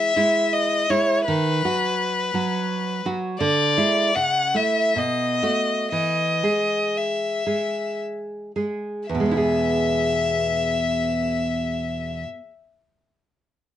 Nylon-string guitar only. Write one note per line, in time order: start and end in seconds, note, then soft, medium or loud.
0.00 0.11 G#3 soft
0.00 0.12 E4 soft
0.16 0.86 G#3 soft
0.16 0.86 E4 soft
0.90 1.23 G#3 soft
0.90 1.23 E4 soft
1.28 1.62 D#3 medium
1.65 2.30 F#3 soft
1.65 2.30 F#4 soft
2.34 3.00 F#3 soft
2.34 3.01 F#4 soft
3.05 3.37 F#3 soft
3.05 3.38 F#4 soft
3.40 3.76 D3 medium
3.77 4.11 G#3 soft
3.77 4.11 E4 soft
4.16 4.54 C#3 soft
4.54 4.93 A3 soft
4.54 4.93 E4 soft
4.96 5.41 B2 soft
5.43 5.88 A3 soft
5.43 5.88 F#4 soft
5.92 6.42 E3 soft
6.43 7.42 G#3 soft
6.43 7.42 G#4 soft
7.47 8.51 G#3 soft
7.47 8.51 G#4 soft
8.56 9.06 G#3 soft
8.56 9.06 G#4 soft
9.09 12.23 E2 soft
9.15 12.28 B2 soft
9.20 12.34 G#3 soft
9.26 12.39 B3 soft
9.31 9.36 E4 soft
9.37 12.50 G#4 soft